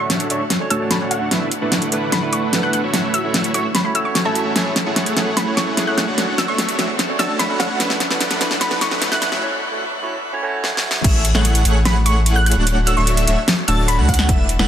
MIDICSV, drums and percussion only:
0, 0, Header, 1, 2, 480
1, 0, Start_track
1, 0, Key_signature, 3, "major"
1, 0, Tempo, 405405
1, 1557, Time_signature, 4, 2, 24, 8
1, 17379, End_track
2, 0, Start_track
2, 0, Title_t, "Drums"
2, 117, Note_on_c, 9, 38, 53
2, 117, Note_on_c, 9, 42, 78
2, 236, Note_off_c, 9, 38, 0
2, 236, Note_off_c, 9, 42, 0
2, 237, Note_on_c, 9, 42, 59
2, 355, Note_off_c, 9, 42, 0
2, 356, Note_on_c, 9, 42, 63
2, 475, Note_off_c, 9, 42, 0
2, 595, Note_on_c, 9, 38, 54
2, 595, Note_on_c, 9, 42, 76
2, 714, Note_off_c, 9, 38, 0
2, 714, Note_off_c, 9, 42, 0
2, 834, Note_on_c, 9, 42, 64
2, 953, Note_off_c, 9, 42, 0
2, 1073, Note_on_c, 9, 38, 53
2, 1073, Note_on_c, 9, 42, 79
2, 1192, Note_off_c, 9, 38, 0
2, 1192, Note_off_c, 9, 42, 0
2, 1313, Note_on_c, 9, 42, 59
2, 1432, Note_off_c, 9, 42, 0
2, 1555, Note_on_c, 9, 38, 56
2, 1555, Note_on_c, 9, 42, 73
2, 1673, Note_off_c, 9, 38, 0
2, 1673, Note_off_c, 9, 42, 0
2, 1794, Note_on_c, 9, 42, 61
2, 1912, Note_off_c, 9, 42, 0
2, 2034, Note_on_c, 9, 38, 58
2, 2034, Note_on_c, 9, 42, 73
2, 2152, Note_off_c, 9, 38, 0
2, 2152, Note_off_c, 9, 42, 0
2, 2153, Note_on_c, 9, 42, 57
2, 2272, Note_off_c, 9, 42, 0
2, 2274, Note_on_c, 9, 42, 61
2, 2392, Note_off_c, 9, 42, 0
2, 2514, Note_on_c, 9, 38, 59
2, 2514, Note_on_c, 9, 42, 75
2, 2632, Note_off_c, 9, 38, 0
2, 2632, Note_off_c, 9, 42, 0
2, 2754, Note_on_c, 9, 42, 61
2, 2872, Note_off_c, 9, 42, 0
2, 2995, Note_on_c, 9, 38, 63
2, 2995, Note_on_c, 9, 42, 76
2, 3113, Note_off_c, 9, 38, 0
2, 3113, Note_off_c, 9, 42, 0
2, 3235, Note_on_c, 9, 42, 58
2, 3353, Note_off_c, 9, 42, 0
2, 3476, Note_on_c, 9, 38, 63
2, 3476, Note_on_c, 9, 42, 70
2, 3594, Note_off_c, 9, 38, 0
2, 3594, Note_off_c, 9, 42, 0
2, 3717, Note_on_c, 9, 42, 60
2, 3835, Note_off_c, 9, 42, 0
2, 3957, Note_on_c, 9, 38, 65
2, 3957, Note_on_c, 9, 42, 72
2, 4075, Note_off_c, 9, 38, 0
2, 4075, Note_off_c, 9, 42, 0
2, 4076, Note_on_c, 9, 42, 57
2, 4194, Note_off_c, 9, 42, 0
2, 4195, Note_on_c, 9, 42, 62
2, 4314, Note_off_c, 9, 42, 0
2, 4436, Note_on_c, 9, 38, 69
2, 4436, Note_on_c, 9, 42, 73
2, 4554, Note_off_c, 9, 38, 0
2, 4554, Note_off_c, 9, 42, 0
2, 4676, Note_on_c, 9, 42, 60
2, 4794, Note_off_c, 9, 42, 0
2, 4916, Note_on_c, 9, 38, 67
2, 4916, Note_on_c, 9, 42, 75
2, 5034, Note_off_c, 9, 38, 0
2, 5034, Note_off_c, 9, 42, 0
2, 5156, Note_on_c, 9, 42, 56
2, 5274, Note_off_c, 9, 42, 0
2, 5396, Note_on_c, 9, 38, 70
2, 5396, Note_on_c, 9, 42, 71
2, 5514, Note_off_c, 9, 38, 0
2, 5514, Note_off_c, 9, 42, 0
2, 5635, Note_on_c, 9, 38, 73
2, 5635, Note_on_c, 9, 42, 61
2, 5754, Note_off_c, 9, 38, 0
2, 5754, Note_off_c, 9, 42, 0
2, 5875, Note_on_c, 9, 38, 73
2, 5875, Note_on_c, 9, 42, 74
2, 5994, Note_off_c, 9, 38, 0
2, 5994, Note_off_c, 9, 42, 0
2, 5995, Note_on_c, 9, 42, 60
2, 6114, Note_off_c, 9, 42, 0
2, 6117, Note_on_c, 9, 38, 75
2, 6117, Note_on_c, 9, 42, 61
2, 6235, Note_off_c, 9, 38, 0
2, 6235, Note_off_c, 9, 42, 0
2, 6356, Note_on_c, 9, 38, 73
2, 6356, Note_on_c, 9, 42, 71
2, 6475, Note_off_c, 9, 38, 0
2, 6475, Note_off_c, 9, 42, 0
2, 6596, Note_on_c, 9, 38, 79
2, 6596, Note_on_c, 9, 42, 63
2, 6714, Note_off_c, 9, 38, 0
2, 6714, Note_off_c, 9, 42, 0
2, 6836, Note_on_c, 9, 38, 76
2, 6836, Note_on_c, 9, 42, 73
2, 6954, Note_off_c, 9, 38, 0
2, 6954, Note_off_c, 9, 42, 0
2, 7076, Note_on_c, 9, 38, 80
2, 7076, Note_on_c, 9, 42, 57
2, 7195, Note_off_c, 9, 38, 0
2, 7195, Note_off_c, 9, 42, 0
2, 7316, Note_on_c, 9, 38, 77
2, 7316, Note_on_c, 9, 42, 73
2, 7434, Note_off_c, 9, 38, 0
2, 7434, Note_off_c, 9, 42, 0
2, 7556, Note_on_c, 9, 38, 81
2, 7556, Note_on_c, 9, 42, 61
2, 7675, Note_off_c, 9, 38, 0
2, 7675, Note_off_c, 9, 42, 0
2, 7796, Note_on_c, 9, 38, 84
2, 7796, Note_on_c, 9, 42, 76
2, 7915, Note_off_c, 9, 38, 0
2, 7915, Note_off_c, 9, 42, 0
2, 7916, Note_on_c, 9, 42, 60
2, 8034, Note_off_c, 9, 42, 0
2, 8036, Note_on_c, 9, 38, 85
2, 8036, Note_on_c, 9, 42, 63
2, 8155, Note_off_c, 9, 38, 0
2, 8155, Note_off_c, 9, 42, 0
2, 8277, Note_on_c, 9, 38, 86
2, 8277, Note_on_c, 9, 42, 75
2, 8395, Note_off_c, 9, 38, 0
2, 8395, Note_off_c, 9, 42, 0
2, 8516, Note_on_c, 9, 38, 88
2, 8516, Note_on_c, 9, 42, 64
2, 8635, Note_off_c, 9, 38, 0
2, 8635, Note_off_c, 9, 42, 0
2, 8756, Note_on_c, 9, 38, 88
2, 8756, Note_on_c, 9, 42, 78
2, 8874, Note_off_c, 9, 38, 0
2, 8874, Note_off_c, 9, 42, 0
2, 8996, Note_on_c, 9, 38, 90
2, 8996, Note_on_c, 9, 42, 60
2, 9115, Note_off_c, 9, 38, 0
2, 9115, Note_off_c, 9, 42, 0
2, 9235, Note_on_c, 9, 38, 86
2, 9235, Note_on_c, 9, 42, 77
2, 9354, Note_off_c, 9, 38, 0
2, 9354, Note_off_c, 9, 42, 0
2, 9355, Note_on_c, 9, 38, 81
2, 9473, Note_off_c, 9, 38, 0
2, 9476, Note_on_c, 9, 38, 89
2, 9476, Note_on_c, 9, 42, 69
2, 9594, Note_off_c, 9, 38, 0
2, 9594, Note_off_c, 9, 42, 0
2, 9597, Note_on_c, 9, 38, 84
2, 9715, Note_off_c, 9, 38, 0
2, 9715, Note_on_c, 9, 38, 93
2, 9715, Note_on_c, 9, 42, 82
2, 9833, Note_off_c, 9, 38, 0
2, 9833, Note_off_c, 9, 42, 0
2, 9835, Note_on_c, 9, 38, 87
2, 9835, Note_on_c, 9, 42, 66
2, 9953, Note_off_c, 9, 38, 0
2, 9953, Note_off_c, 9, 42, 0
2, 9955, Note_on_c, 9, 38, 98
2, 9955, Note_on_c, 9, 42, 69
2, 10074, Note_off_c, 9, 38, 0
2, 10074, Note_off_c, 9, 42, 0
2, 10074, Note_on_c, 9, 38, 84
2, 10192, Note_off_c, 9, 38, 0
2, 10194, Note_on_c, 9, 38, 96
2, 10194, Note_on_c, 9, 42, 84
2, 10312, Note_off_c, 9, 38, 0
2, 10312, Note_off_c, 9, 42, 0
2, 10314, Note_on_c, 9, 38, 87
2, 10432, Note_off_c, 9, 38, 0
2, 10434, Note_on_c, 9, 38, 96
2, 10434, Note_on_c, 9, 42, 69
2, 10553, Note_off_c, 9, 38, 0
2, 10553, Note_off_c, 9, 42, 0
2, 10555, Note_on_c, 9, 38, 87
2, 10673, Note_off_c, 9, 38, 0
2, 10675, Note_on_c, 9, 38, 97
2, 10675, Note_on_c, 9, 42, 82
2, 10794, Note_off_c, 9, 38, 0
2, 10794, Note_off_c, 9, 42, 0
2, 10795, Note_on_c, 9, 38, 83
2, 10913, Note_off_c, 9, 38, 0
2, 10915, Note_on_c, 9, 38, 99
2, 10915, Note_on_c, 9, 42, 62
2, 11033, Note_off_c, 9, 38, 0
2, 11033, Note_off_c, 9, 42, 0
2, 11035, Note_on_c, 9, 38, 90
2, 11154, Note_off_c, 9, 38, 0
2, 12595, Note_on_c, 9, 38, 70
2, 12714, Note_off_c, 9, 38, 0
2, 12755, Note_on_c, 9, 38, 81
2, 12874, Note_off_c, 9, 38, 0
2, 12916, Note_on_c, 9, 38, 96
2, 13035, Note_off_c, 9, 38, 0
2, 13076, Note_on_c, 9, 36, 109
2, 13077, Note_on_c, 9, 42, 81
2, 13077, Note_on_c, 9, 49, 102
2, 13194, Note_off_c, 9, 36, 0
2, 13195, Note_off_c, 9, 42, 0
2, 13195, Note_off_c, 9, 49, 0
2, 13316, Note_on_c, 9, 42, 68
2, 13435, Note_off_c, 9, 42, 0
2, 13436, Note_on_c, 9, 40, 63
2, 13554, Note_off_c, 9, 40, 0
2, 13556, Note_on_c, 9, 42, 82
2, 13674, Note_off_c, 9, 42, 0
2, 13675, Note_on_c, 9, 42, 66
2, 13794, Note_off_c, 9, 42, 0
2, 13796, Note_on_c, 9, 42, 70
2, 13914, Note_off_c, 9, 42, 0
2, 14036, Note_on_c, 9, 38, 123
2, 14036, Note_on_c, 9, 42, 82
2, 14154, Note_off_c, 9, 38, 0
2, 14154, Note_off_c, 9, 42, 0
2, 14277, Note_on_c, 9, 42, 67
2, 14395, Note_off_c, 9, 42, 0
2, 14518, Note_on_c, 9, 42, 83
2, 14636, Note_off_c, 9, 42, 0
2, 14757, Note_on_c, 9, 42, 51
2, 14818, Note_off_c, 9, 42, 0
2, 14818, Note_on_c, 9, 42, 68
2, 14936, Note_off_c, 9, 42, 0
2, 14998, Note_on_c, 9, 42, 79
2, 15117, Note_off_c, 9, 42, 0
2, 15238, Note_on_c, 9, 42, 68
2, 15357, Note_off_c, 9, 42, 0
2, 15476, Note_on_c, 9, 42, 80
2, 15595, Note_off_c, 9, 42, 0
2, 15597, Note_on_c, 9, 42, 64
2, 15716, Note_off_c, 9, 42, 0
2, 15718, Note_on_c, 9, 42, 69
2, 15836, Note_off_c, 9, 42, 0
2, 15958, Note_on_c, 9, 38, 120
2, 15958, Note_on_c, 9, 42, 78
2, 16077, Note_off_c, 9, 38, 0
2, 16077, Note_off_c, 9, 42, 0
2, 16198, Note_on_c, 9, 42, 67
2, 16316, Note_off_c, 9, 42, 0
2, 16438, Note_on_c, 9, 42, 82
2, 16556, Note_off_c, 9, 42, 0
2, 16677, Note_on_c, 9, 36, 63
2, 16679, Note_on_c, 9, 42, 48
2, 16739, Note_off_c, 9, 42, 0
2, 16739, Note_on_c, 9, 42, 66
2, 16796, Note_off_c, 9, 36, 0
2, 16799, Note_on_c, 9, 40, 79
2, 16857, Note_off_c, 9, 42, 0
2, 16917, Note_on_c, 9, 36, 116
2, 16918, Note_off_c, 9, 40, 0
2, 16919, Note_on_c, 9, 42, 79
2, 17036, Note_off_c, 9, 36, 0
2, 17038, Note_off_c, 9, 42, 0
2, 17158, Note_on_c, 9, 42, 63
2, 17276, Note_off_c, 9, 42, 0
2, 17279, Note_on_c, 9, 40, 59
2, 17379, Note_off_c, 9, 40, 0
2, 17379, End_track
0, 0, End_of_file